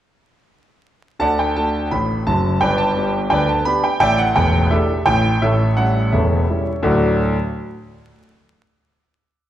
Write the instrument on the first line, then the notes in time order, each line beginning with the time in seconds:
grand piano
1.19 D2 D3 D5 F#5 A5
1.39 G5
1.56 A3 D4 F#4 A5
1.91 A1 A2 B5
2.27 F#1 F#2 A5
2.60 G1 G2 B4 D5 G5
2.78 A5
2.96 B3 D4 G4
3.30 D2 D3 B4 D5 G5
3.49 A5
3.65 B3 D4 G4 B5
3.84 G5
4.00 A1 A2 D5 E5 G5
4.18 F#5
4.36 E1 E2 G5
4.70 A3 D4 E4 G4 A4 E5
5.06 A1 A2 G5
5.42 A1 A2 A4 C#5 E5
5.77 G3 C#4 E4 F#5
6.12 E1 E2 A4 C#5 E5
6.49 G3 C#4 E4
6.83 D2 A2 F#3 A3 D4 F#4 D5